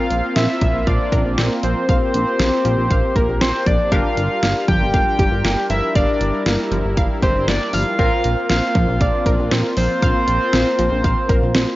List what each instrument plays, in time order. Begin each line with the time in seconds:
Already playing: analog synth pad A#3 C4 F4, analog polysynth C4 F4 A#4, analog synth lead F5
0.11 analog synth bass A#1, closed hi-hat
0.36 analog synth bass A#1, synth pluck C4, analog synth lead E5, snare, closed hi-hat
0.61 analog synth bass A#1, synth pluck F3, kick, closed hi-hat
0.74 analog synth bass A#1
0.87 analog synth bass A#1, analog synth lead D5, synth pluck F5, kick, closed hi-hat
1.12 analog synth bass A#1, synth pluck A#4, kick, closed hi-hat
1.25 analog synth bass A#1
1.38 analog synth bass A#1, synth pluck C4, snare, closed hi-hat
1.63 analog synth bass A#1, synth pluck F3, analog synth lead C5, closed hi-hat
1.89 analog synth bass A#1, analog synth pad G4, synth pluck F5, kick, closed hi-hat
2.14 analog synth bass A#1, closed hi-hat
2.39 analog synth bass A#1, synth pluck C4, snare, closed hi-hat
2.65 analog synth bass A#1, synth pluck F3, closed hi-hat
2.78 analog synth bass A#1
2.90 analog synth bass A#1, synth pluck F5, kick, closed hi-hat
3.16 analog synth bass A#1, synth pluck A#4, analog synth lead A#4, kick, closed hi-hat
3.29 analog synth bass A#1
3.41 analog synth bass A#1, synth pluck C4, analog synth lead C5, snare, closed hi-hat
3.67 analog synth bass A#1, synth pluck F3, analog synth lead D5, kick, closed hi-hat
3.92 analog synth bass G1, analog synth pad G3 F4 A#4, analog polysynth D4 G4 A#4, synth pluck F5, analog synth lead F5, kick, closed hi-hat
4.17 analog synth bass G1, closed hi-hat
4.43 analog synth bass G1, synth pluck A#3, snare, closed hi-hat
4.68 analog synth bass G1, synth pluck F3, analog synth lead G5, kick, closed hi-hat
4.81 analog synth bass G1
4.94 analog synth bass G1, synth pluck F5, kick, closed hi-hat
5.19 analog synth bass G1, synth pluck G4, kick, closed hi-hat
5.32 analog synth bass G1
5.45 analog synth bass G1, synth pluck A#3, snare, closed hi-hat
5.70 analog synth bass G1, synth pluck F3, analog synth lead E5, closed hi-hat
5.96 analog synth bass G1, analog synth pad E4, analog synth lead D5, synth pluck F5, kick, closed hi-hat
6.21 analog synth bass G1, closed hi-hat
6.46 analog synth bass G1, synth pluck A#3, snare, closed hi-hat
6.72 analog synth bass G1, synth pluck F3, closed hi-hat
6.85 analog synth bass G1
6.97 analog synth bass G1, synth pluck F5, kick, closed hi-hat
7.23 analog synth bass G1, synth pluck G4, analog synth lead C5, kick, closed hi-hat
7.35 analog synth bass G1
7.48 analog synth bass G1, synth pluck A#3, analog synth lead D5, snare, closed hi-hat
7.73 analog synth bass G1, synth pluck F3, analog synth lead F5, open hi-hat
7.99 analog synth bass A#1, analog synth pad A#3 C4 F4, analog polysynth C4 F4 A#4, synth pluck F5, kick, closed hi-hat
8.24 analog synth bass A#1, closed hi-hat
8.50 analog synth bass A#1, synth pluck C4, analog synth lead F5, snare, closed hi-hat
8.75 analog synth bass A#1, synth pluck F3, kick, closed hi-hat
8.88 analog synth bass A#1
9.01 analog synth bass A#1, analog synth lead D5, synth pluck F5, kick, closed hi-hat
9.26 analog synth bass A#1, synth pluck A#4, kick, closed hi-hat
9.39 analog synth bass A#1
9.51 analog synth bass A#1, synth pluck C4, snare, closed hi-hat
9.77 analog synth bass A#1, synth pluck F3, analog synth lead C5, open hi-hat
10.02 analog synth bass A#1, synth pluck F5, kick, closed hi-hat
10.28 analog synth bass A#1, closed hi-hat
10.53 analog synth bass A#1, synth pluck C4, snare, closed hi-hat
10.79 analog synth bass A#1, synth pluck F3, closed hi-hat
10.91 analog synth bass A#1
11.04 analog synth bass A#1, synth pluck F5, kick, closed hi-hat
11.29 analog synth bass A#1, synth pluck A#4, kick, closed hi-hat
11.42 analog synth bass A#1
11.55 analog synth bass A#1, synth pluck C4, snare, closed hi-hat